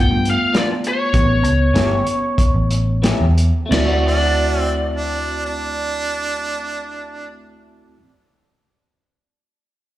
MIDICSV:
0, 0, Header, 1, 7, 480
1, 0, Start_track
1, 0, Tempo, 594648
1, 915, Time_signature, 4, 2, 24, 8
1, 1407, Tempo, 643087
1, 2367, Tempo, 699301
1, 7133, End_track
2, 0, Start_track
2, 0, Title_t, "Lead electric guitar"
2, 0, Program_c, 0, 29
2, 2, Note_on_c, 0, 79, 89
2, 224, Note_off_c, 0, 79, 0
2, 241, Note_on_c, 0, 77, 88
2, 463, Note_off_c, 0, 77, 0
2, 468, Note_on_c, 0, 74, 75
2, 528, Note_off_c, 0, 74, 0
2, 713, Note_on_c, 0, 73, 76
2, 2355, Note_off_c, 0, 73, 0
2, 2842, Note_on_c, 0, 74, 76
2, 5285, Note_off_c, 0, 74, 0
2, 7133, End_track
3, 0, Start_track
3, 0, Title_t, "Harmonica"
3, 0, Program_c, 1, 22
3, 3086, Note_on_c, 1, 62, 102
3, 3450, Note_off_c, 1, 62, 0
3, 3450, Note_on_c, 1, 60, 102
3, 3548, Note_off_c, 1, 60, 0
3, 3688, Note_on_c, 1, 62, 82
3, 4029, Note_off_c, 1, 62, 0
3, 4033, Note_on_c, 1, 62, 99
3, 5279, Note_off_c, 1, 62, 0
3, 7133, End_track
4, 0, Start_track
4, 0, Title_t, "Reed electric piano"
4, 0, Program_c, 2, 4
4, 0, Note_on_c, 2, 57, 69
4, 0, Note_on_c, 2, 59, 59
4, 0, Note_on_c, 2, 65, 75
4, 892, Note_off_c, 2, 59, 0
4, 893, Note_off_c, 2, 57, 0
4, 893, Note_off_c, 2, 65, 0
4, 915, Note_on_c, 2, 59, 66
4, 917, Note_on_c, 2, 61, 49
4, 923, Note_on_c, 2, 67, 57
4, 2809, Note_off_c, 2, 59, 0
4, 2810, Note_off_c, 2, 61, 0
4, 2813, Note_off_c, 2, 67, 0
4, 2821, Note_on_c, 2, 60, 75
4, 2838, Note_on_c, 2, 64, 64
4, 2854, Note_on_c, 2, 66, 75
4, 5754, Note_off_c, 2, 60, 0
4, 5764, Note_off_c, 2, 64, 0
4, 5772, Note_off_c, 2, 66, 0
4, 7133, End_track
5, 0, Start_track
5, 0, Title_t, "Clean electric guitar"
5, 0, Program_c, 3, 27
5, 426, Note_on_c, 3, 53, 76
5, 431, Note_on_c, 3, 59, 75
5, 438, Note_on_c, 3, 62, 80
5, 440, Note_on_c, 3, 65, 98
5, 580, Note_off_c, 3, 53, 0
5, 583, Note_off_c, 3, 59, 0
5, 586, Note_off_c, 3, 62, 0
5, 587, Note_off_c, 3, 65, 0
5, 1401, Note_on_c, 3, 52, 74
5, 1407, Note_on_c, 3, 57, 94
5, 1411, Note_on_c, 3, 61, 105
5, 1415, Note_on_c, 3, 67, 96
5, 1550, Note_off_c, 3, 52, 0
5, 1553, Note_off_c, 3, 57, 0
5, 1555, Note_off_c, 3, 61, 0
5, 1557, Note_off_c, 3, 67, 0
5, 2362, Note_on_c, 3, 52, 83
5, 2368, Note_on_c, 3, 57, 83
5, 2371, Note_on_c, 3, 61, 93
5, 2375, Note_on_c, 3, 67, 86
5, 2510, Note_off_c, 3, 52, 0
5, 2513, Note_off_c, 3, 57, 0
5, 2514, Note_off_c, 3, 61, 0
5, 2516, Note_off_c, 3, 67, 0
5, 2799, Note_on_c, 3, 57, 76
5, 2872, Note_on_c, 3, 60, 86
5, 2930, Note_on_c, 3, 66, 92
5, 5759, Note_off_c, 3, 57, 0
5, 5808, Note_off_c, 3, 60, 0
5, 5837, Note_off_c, 3, 66, 0
5, 7133, End_track
6, 0, Start_track
6, 0, Title_t, "Picked electric bass"
6, 0, Program_c, 4, 34
6, 87, Note_on_c, 4, 43, 95
6, 291, Note_off_c, 4, 43, 0
6, 917, Note_on_c, 4, 33, 92
6, 1155, Note_off_c, 4, 33, 0
6, 1155, Note_on_c, 4, 37, 80
6, 1371, Note_off_c, 4, 37, 0
6, 1405, Note_on_c, 4, 31, 92
6, 1607, Note_off_c, 4, 31, 0
6, 2006, Note_on_c, 4, 33, 82
6, 2427, Note_off_c, 4, 33, 0
6, 2489, Note_on_c, 4, 40, 91
6, 2692, Note_off_c, 4, 40, 0
6, 2835, Note_on_c, 4, 38, 87
6, 5762, Note_off_c, 4, 38, 0
6, 7133, End_track
7, 0, Start_track
7, 0, Title_t, "Drums"
7, 205, Note_on_c, 9, 42, 59
7, 285, Note_off_c, 9, 42, 0
7, 439, Note_on_c, 9, 42, 73
7, 443, Note_on_c, 9, 38, 108
7, 519, Note_off_c, 9, 42, 0
7, 523, Note_off_c, 9, 38, 0
7, 679, Note_on_c, 9, 42, 64
7, 760, Note_off_c, 9, 42, 0
7, 919, Note_on_c, 9, 36, 108
7, 919, Note_on_c, 9, 42, 86
7, 1000, Note_off_c, 9, 36, 0
7, 1000, Note_off_c, 9, 42, 0
7, 1166, Note_on_c, 9, 42, 66
7, 1247, Note_off_c, 9, 42, 0
7, 1416, Note_on_c, 9, 42, 86
7, 1420, Note_on_c, 9, 38, 118
7, 1491, Note_off_c, 9, 42, 0
7, 1494, Note_off_c, 9, 38, 0
7, 1648, Note_on_c, 9, 42, 67
7, 1723, Note_off_c, 9, 42, 0
7, 1883, Note_on_c, 9, 36, 95
7, 1886, Note_on_c, 9, 42, 96
7, 1958, Note_off_c, 9, 36, 0
7, 1961, Note_off_c, 9, 42, 0
7, 2126, Note_on_c, 9, 42, 74
7, 2200, Note_off_c, 9, 42, 0
7, 2371, Note_on_c, 9, 42, 91
7, 2375, Note_on_c, 9, 38, 107
7, 2440, Note_off_c, 9, 42, 0
7, 2443, Note_off_c, 9, 38, 0
7, 2605, Note_on_c, 9, 42, 65
7, 2674, Note_off_c, 9, 42, 0
7, 2839, Note_on_c, 9, 49, 84
7, 2843, Note_on_c, 9, 38, 91
7, 2908, Note_off_c, 9, 49, 0
7, 2911, Note_off_c, 9, 38, 0
7, 7133, End_track
0, 0, End_of_file